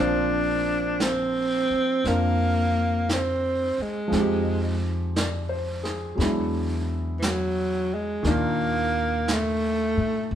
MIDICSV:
0, 0, Header, 1, 6, 480
1, 0, Start_track
1, 0, Key_signature, -2, "major"
1, 0, Tempo, 1045296
1, 1417, Tempo, 1032702
1, 1898, Time_signature, 4, 2, 24, 8
1, 4793, End_track
2, 0, Start_track
2, 0, Title_t, "Grand piano"
2, 0, Program_c, 0, 0
2, 0, Note_on_c, 0, 53, 50
2, 0, Note_on_c, 0, 58, 45
2, 0, Note_on_c, 0, 60, 46
2, 0, Note_on_c, 0, 62, 44
2, 0, Note_on_c, 0, 72, 58
2, 78, Control_c, 0, 64, 127
2, 931, Note_off_c, 0, 60, 0
2, 936, Note_off_c, 0, 62, 0
2, 938, Note_on_c, 0, 60, 36
2, 942, Note_on_c, 0, 62, 33
2, 947, Note_on_c, 0, 65, 34
2, 952, Note_on_c, 0, 70, 40
2, 1870, Note_off_c, 0, 53, 0
2, 1877, Note_on_c, 0, 53, 44
2, 1889, Note_on_c, 0, 56, 38
2, 1896, Note_off_c, 0, 60, 0
2, 1899, Note_off_c, 0, 58, 0
2, 1899, Note_off_c, 0, 62, 0
2, 1901, Note_off_c, 0, 65, 0
2, 1903, Note_off_c, 0, 72, 0
2, 1903, Control_c, 0, 64, 0
2, 1903, Note_on_c, 0, 60, 38
2, 1904, Note_off_c, 0, 70, 0
2, 1915, Note_on_c, 0, 63, 40
2, 1930, Note_on_c, 0, 67, 52
2, 1988, Control_c, 0, 64, 127
2, 2384, Note_on_c, 0, 74, 39
2, 2536, Note_on_c, 0, 72, 40
2, 2682, Note_off_c, 0, 74, 0
2, 2695, Note_on_c, 0, 68, 44
2, 2784, Note_off_c, 0, 72, 0
2, 2842, Note_off_c, 0, 56, 0
2, 2842, Note_on_c, 0, 54, 39
2, 2847, Note_off_c, 0, 53, 0
2, 2849, Note_on_c, 0, 56, 41
2, 2855, Note_on_c, 0, 59, 38
2, 2860, Note_off_c, 0, 60, 0
2, 2863, Control_c, 0, 64, 0
2, 2863, Note_on_c, 0, 62, 38
2, 2866, Note_off_c, 0, 63, 0
2, 2868, Note_on_c, 0, 64, 43
2, 2873, Note_off_c, 0, 67, 0
2, 2938, Control_c, 0, 64, 127
2, 2943, Note_off_c, 0, 68, 0
2, 3807, Note_on_c, 0, 51, 52
2, 3808, Note_off_c, 0, 54, 0
2, 3811, Note_off_c, 0, 56, 0
2, 3812, Note_off_c, 0, 62, 0
2, 3813, Note_on_c, 0, 46, 44
2, 3814, Note_off_c, 0, 59, 0
2, 3819, Note_on_c, 0, 62, 42
2, 3820, Control_c, 0, 64, 0
2, 3821, Note_off_c, 0, 64, 0
2, 3824, Note_on_c, 0, 63, 44
2, 3828, Note_on_c, 0, 65, 54
2, 3913, Control_c, 0, 64, 127
2, 4793, Note_off_c, 0, 46, 0
2, 4793, Note_off_c, 0, 51, 0
2, 4793, Note_off_c, 0, 62, 0
2, 4793, Note_off_c, 0, 63, 0
2, 4793, Note_off_c, 0, 65, 0
2, 4793, End_track
3, 0, Start_track
3, 0, Title_t, "Tenor saxophone"
3, 0, Program_c, 1, 66
3, 0, Note_on_c, 1, 62, 83
3, 474, Note_on_c, 1, 60, 82
3, 481, Note_off_c, 1, 62, 0
3, 954, Note_on_c, 1, 58, 82
3, 961, Note_off_c, 1, 60, 0
3, 1437, Note_on_c, 1, 60, 72
3, 1444, Note_off_c, 1, 58, 0
3, 1757, Note_on_c, 1, 56, 66
3, 1764, Note_off_c, 1, 60, 0
3, 2227, Note_off_c, 1, 56, 0
3, 3325, Note_on_c, 1, 52, 55
3, 3350, Note_on_c, 1, 54, 73
3, 3357, Note_off_c, 1, 52, 0
3, 3674, Note_on_c, 1, 56, 79
3, 3681, Note_off_c, 1, 54, 0
3, 3837, Note_on_c, 1, 58, 88
3, 3844, Note_off_c, 1, 56, 0
3, 4323, Note_on_c, 1, 57, 81
3, 4330, Note_off_c, 1, 58, 0
3, 4792, Note_off_c, 1, 57, 0
3, 4793, End_track
4, 0, Start_track
4, 0, Title_t, "Upright bass"
4, 0, Program_c, 2, 32
4, 0, Note_on_c, 2, 34, 66
4, 761, Note_off_c, 2, 34, 0
4, 939, Note_on_c, 2, 41, 68
4, 1719, Note_off_c, 2, 41, 0
4, 1897, Note_on_c, 2, 41, 70
4, 2838, Note_off_c, 2, 41, 0
4, 2854, Note_on_c, 2, 40, 70
4, 3795, Note_off_c, 2, 40, 0
4, 3812, Note_on_c, 2, 39, 70
4, 4597, Note_off_c, 2, 39, 0
4, 4617, Note_on_c, 2, 46, 54
4, 4767, Note_off_c, 2, 46, 0
4, 4775, Note_on_c, 2, 34, 71
4, 4793, Note_off_c, 2, 34, 0
4, 4793, End_track
5, 0, Start_track
5, 0, Title_t, "Muted upright bass strokes"
5, 782, Note_on_c, 9, 29, 32
5, 828, Note_off_c, 9, 29, 0
5, 1742, Note_on_c, 9, 29, 30
5, 1788, Note_off_c, 9, 29, 0
5, 4793, End_track
6, 0, Start_track
6, 0, Title_t, "Drums"
6, 459, Note_on_c, 9, 25, 35
6, 459, Note_on_c, 9, 38, 42
6, 459, Note_on_c, 9, 44, 41
6, 505, Note_off_c, 9, 38, 0
6, 505, Note_off_c, 9, 44, 0
6, 941, Note_off_c, 9, 25, 0
6, 941, Note_on_c, 9, 25, 29
6, 941, Note_on_c, 9, 38, 25
6, 987, Note_off_c, 9, 38, 0
6, 1420, Note_off_c, 9, 25, 0
6, 1420, Note_on_c, 9, 25, 34
6, 1420, Note_on_c, 9, 38, 40
6, 1420, Note_on_c, 9, 44, 40
6, 1466, Note_off_c, 9, 38, 0
6, 1466, Note_off_c, 9, 44, 0
6, 1898, Note_off_c, 9, 25, 0
6, 1898, Note_on_c, 9, 25, 36
6, 1898, Note_on_c, 9, 38, 25
6, 1945, Note_off_c, 9, 38, 0
6, 2382, Note_off_c, 9, 25, 0
6, 2382, Note_on_c, 9, 25, 36
6, 2382, Note_on_c, 9, 38, 43
6, 2382, Note_on_c, 9, 44, 42
6, 2428, Note_off_c, 9, 38, 0
6, 2428, Note_off_c, 9, 44, 0
6, 2702, Note_on_c, 9, 38, 24
6, 2748, Note_off_c, 9, 38, 0
6, 2862, Note_off_c, 9, 25, 0
6, 2862, Note_on_c, 9, 25, 32
6, 2862, Note_on_c, 9, 38, 25
6, 2909, Note_off_c, 9, 38, 0
6, 3340, Note_off_c, 9, 25, 0
6, 3340, Note_on_c, 9, 25, 30
6, 3340, Note_on_c, 9, 38, 39
6, 3340, Note_on_c, 9, 44, 51
6, 3386, Note_off_c, 9, 38, 0
6, 3386, Note_off_c, 9, 44, 0
6, 3814, Note_off_c, 9, 25, 0
6, 3814, Note_on_c, 9, 25, 29
6, 3814, Note_on_c, 9, 38, 26
6, 3860, Note_off_c, 9, 38, 0
6, 4295, Note_off_c, 9, 25, 0
6, 4295, Note_on_c, 9, 25, 38
6, 4295, Note_on_c, 9, 38, 40
6, 4295, Note_on_c, 9, 44, 49
6, 4342, Note_off_c, 9, 38, 0
6, 4342, Note_off_c, 9, 44, 0
6, 4793, Note_off_c, 9, 25, 0
6, 4793, End_track
0, 0, End_of_file